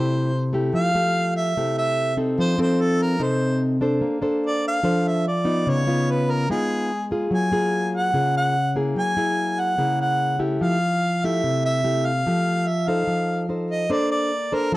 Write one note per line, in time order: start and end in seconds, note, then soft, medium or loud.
0.00 0.71 C3 medium
0.00 0.31 A3 soft
0.00 0.31 E4 soft
0.00 0.31 G4 medium
0.00 0.53 C5 medium
0.53 0.90 A3 medium
0.53 0.91 E4 medium
0.53 0.91 G4 medium
0.73 1.53 F3 medium
0.73 1.31 F5 loud
0.95 1.53 A3 medium
0.95 1.53 G4 medium
1.36 1.74 E5 medium
1.57 2.36 C3 medium
1.57 2.15 A3 soft
1.57 2.15 E4 soft
1.57 2.15 G4 medium
1.78 2.15 E5 medium
2.17 2.55 C4 soft
2.17 2.55 D#4 medium
2.17 2.55 A4 medium
2.38 3.18 F3 medium
2.38 2.58 C5 medium
2.58 3.17 C4 medium
2.58 3.17 D#4 medium
2.58 3.17 A4 medium
2.58 2.83 C5 medium
2.82 3.04 A4 medium
3.02 3.25 A#4 medium
3.19 4.00 C3 medium
3.19 3.78 C4 soft
3.19 3.78 D#4 soft
3.19 3.79 A4 soft
3.19 3.63 C5 medium
3.81 4.19 D4 medium
3.81 4.19 A4 soft
3.81 4.20 C5 medium
4.01 4.82 A#3 medium
4.22 4.81 D4 medium
4.22 4.81 A4 medium
4.22 4.81 C5 medium
4.47 4.64 D5 medium
4.68 5.09 F5 medium
4.83 5.64 F3 medium
4.83 5.25 D4 soft
4.83 5.25 A4 soft
4.83 5.25 C5 soft
5.08 5.27 E5 medium
5.28 5.71 D5 medium
5.45 5.83 B3 medium
5.45 5.83 D#4 medium
5.45 5.84 F4 medium
5.67 6.47 C#3 medium
5.67 6.12 C#5 medium
5.87 6.46 B3 medium
5.87 6.46 D#4 medium
5.87 6.46 F4 medium
6.11 6.33 B4 medium
6.31 6.50 A#4 medium
6.49 7.30 G#3 medium
6.49 6.90 B3 soft
6.49 6.91 D#4 soft
6.49 6.91 F4 soft
6.49 7.08 G#4 medium
7.11 7.49 A#3 soft
7.11 7.49 F4 medium
7.11 7.49 G#4 medium
7.31 8.11 F#3 medium
7.31 7.91 G#5 medium
7.52 8.10 A#3 medium
7.52 8.11 F4 medium
7.52 8.11 G#4 medium
7.96 8.33 F#5 medium
8.13 8.94 C#3 medium
8.13 8.55 A#3 soft
8.13 8.55 F4 soft
8.13 8.55 G#4 soft
8.37 8.74 F#5 medium
8.76 9.14 A#3 medium
8.76 9.14 E4 soft
8.76 9.14 G#4 medium
8.95 9.76 F#3 medium
8.95 9.61 G#5 loud
9.17 9.75 A#3 medium
9.17 9.75 E4 medium
9.17 9.76 G#4 medium
9.60 10.00 F#5 medium
9.78 10.59 C#3 medium
9.78 10.37 A#3 soft
9.78 10.37 E4 soft
9.78 10.37 G#4 soft
10.01 10.38 F#5 medium
10.39 10.78 A3 medium
10.39 10.78 E4 medium
10.39 10.78 G4 medium
10.61 11.41 F3 medium
10.61 11.26 F5 medium
11.24 11.82 A3 medium
11.24 11.82 E4 soft
11.24 11.82 G4 medium
11.24 11.65 E5 medium
11.44 12.24 C3 medium
11.65 12.07 E5 medium
11.84 12.11 A3 soft
11.84 12.11 E4 soft
11.84 12.11 G4 medium
12.06 12.69 F5 medium
12.27 13.06 F3 medium
12.27 12.67 A3 soft
12.27 12.67 G4 medium
12.67 12.90 E5 medium
12.88 13.46 D#4 medium
12.88 13.46 A4 medium
12.88 13.46 C5 medium
12.88 13.49 F5 medium
13.07 13.88 F3 medium
13.49 13.87 D#4 soft
13.49 13.87 A4 soft
13.49 13.87 C5 soft
13.71 13.93 D#5 medium
13.90 14.70 A#3 medium
13.90 14.31 D4 soft
13.90 14.31 A4 soft
13.90 14.31 C5 soft
13.90 14.11 D5 medium
14.11 14.55 D5 medium
14.52 14.77 D4 medium
14.52 14.77 A4 medium
14.52 14.73 A#4 medium
14.52 14.77 C5 medium
14.72 14.77 F3 medium